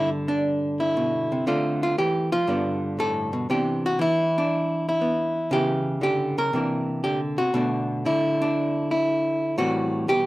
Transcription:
0.00 1.46 G2 medium
0.00 1.46 D3 medium
0.00 1.47 B3 soft
0.00 0.28 D4 soft
0.28 1.30 D4 medium
0.80 1.47 E4 medium
0.97 1.31 B2 medium
1.32 1.47 C3 medium
1.47 1.98 D3 medium
1.47 2.47 A3 soft
1.47 2.47 C4 soft
1.47 1.82 F4 medium
1.83 1.98 F4 medium
1.98 2.33 E3 medium
1.98 2.32 G4 medium
2.32 2.48 F3 medium
2.32 2.99 F4 medium
2.47 3.47 G2 medium
2.47 3.49 D3 soft
2.47 3.50 B3 soft
2.47 3.48 D4 soft
2.99 3.33 A2 medium
2.99 3.50 A4 loud
3.33 3.49 B2 medium
3.50 4.00 C3 medium
3.50 3.99 E3 soft
3.50 5.00 B3 soft
3.50 4.36 D4 soft
3.50 3.84 G4 medium
3.86 4.01 F#4 loud
3.99 5.49 E3 medium
3.99 4.86 E4 medium
4.38 5.37 D4 medium
4.89 5.52 E4 medium
5.01 5.50 B3 soft
5.51 6.37 C#3 medium
5.51 6.01 E3 soft
5.51 6.51 B3 soft
5.51 6.52 E4 soft
5.51 6.02 G4 medium
6.01 6.36 D3 medium
6.01 6.37 G4 loud
6.38 6.53 C#3 medium
6.38 7.03 A#4 medium
6.53 7.38 C3 medium
6.53 7.04 E3 soft
6.53 7.53 A#3 soft
6.53 7.53 D4 soft
7.04 7.39 D3 medium
7.04 7.20 G4 medium
7.38 7.53 C3 medium
7.38 8.05 F#4 medium
7.54 8.05 B2 medium
7.54 8.05 D3 soft
7.54 9.55 A3 medium
7.54 8.40 D4 soft
8.05 9.57 D3 medium
8.05 8.90 E4 medium
8.42 9.42 D4 medium
8.91 9.57 E4 medium
9.58 10.08 A2 medium
9.58 10.26 E3 soft
9.58 10.26 G3 soft
9.58 10.26 C4 soft
9.58 10.08 F#4 medium
10.08 10.26 B2 medium
10.08 10.25 G4 loud

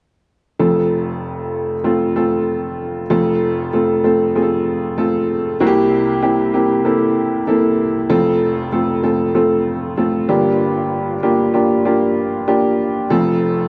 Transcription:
0.59 3.06 F1 soft
0.59 3.06 F2 medium
0.59 1.74 A3 medium
0.59 1.74 C4 soft
0.59 1.74 F4 medium
0.59 1.74 A4 medium
1.84 2.13 A3 medium
1.84 2.13 C4 medium
1.84 2.13 F4 medium
1.84 2.13 A4 medium
2.16 3.02 A3 medium
2.16 3.02 C4 medium
2.16 3.02 F4 medium
2.16 3.02 A4 medium
3.10 5.56 F1 medium
3.10 5.56 F2 soft
3.10 3.67 A3 medium
3.10 3.67 C4 medium
3.10 3.67 F4 medium
3.10 3.67 A4 medium
3.73 4.01 A3 medium
3.73 4.01 C4 medium
3.73 4.01 F4 medium
3.73 4.01 A4 medium
4.04 4.32 A3 medium
4.04 4.32 C4 medium
4.04 4.32 F4 medium
4.04 4.32 A4 medium
4.35 4.92 A3 medium
4.35 4.92 C4 medium
4.35 4.92 F4 medium
4.35 4.42 G#4 medium
4.42 4.96 A4 medium
4.98 5.55 A3 medium
4.98 5.55 C4 medium
4.98 5.55 F4 medium
4.98 5.55 A4 medium
5.60 8.06 C2 medium
5.60 8.06 C3 soft
5.60 6.17 A#3 medium
5.60 6.17 C4 medium
5.60 6.17 E4 medium
5.60 5.67 F#4 medium
5.67 6.21 G4 medium
6.22 6.51 A#3 medium
6.22 6.51 C4 medium
6.22 6.51 E4 medium
6.22 6.51 G4 medium
6.54 6.82 A#3 medium
6.54 6.82 C4 soft
6.54 6.83 E4 medium
6.54 6.82 G4 medium
6.85 7.42 A#3 medium
6.85 7.42 C4 medium
6.85 7.42 E4 medium
6.85 7.42 A4 medium
7.47 8.05 A#3 medium
7.47 8.05 C4 medium
7.47 8.05 E4 medium
7.47 8.05 A4 medium
8.10 10.25 F1 medium
8.10 10.25 F2 medium
8.10 8.67 A3 medium
8.10 8.67 C4 medium
8.10 8.67 F4 medium
8.10 8.67 A4 medium
8.72 9.01 A3 medium
8.72 9.01 C4 medium
8.72 9.01 F4 medium
8.72 9.01 A4 medium
9.03 9.32 A3 medium
9.03 9.32 C4 medium
9.03 9.32 F4 soft
9.03 9.32 A4 medium
9.35 9.92 A3 medium
9.35 9.92 C4 medium
9.35 9.92 F4 medium
9.35 9.92 A4 medium
9.97 10.29 A3 medium
9.97 10.29 C4 medium
9.97 10.27 F4 medium
9.97 10.29 A4 medium
10.28 12.75 G1 medium
10.28 12.75 G2 medium
10.28 11.15 A#3 medium
10.28 11.15 D4 medium
10.28 11.15 F4 medium
10.28 11.15 G4 medium
11.23 11.51 A#3 medium
11.23 11.51 D4 medium
11.23 11.51 F4 medium
11.23 11.51 G4 medium
11.54 11.83 A#3 medium
11.54 11.83 D4 soft
11.54 11.83 F4 medium
11.54 11.83 G4 medium
11.85 12.43 A#3 medium
11.85 12.43 D4 medium
11.85 12.43 F4 medium
11.85 12.42 G4 medium
12.48 13.05 A#3 medium
12.48 13.05 D4 medium
12.48 13.05 F4 medium
12.48 13.05 G4 medium
13.10 13.68 F1 medium
13.10 13.68 F2 medium
13.10 13.68 A3 medium
13.10 13.67 C4 medium
13.10 13.68 F4 medium
13.10 13.68 A4 medium

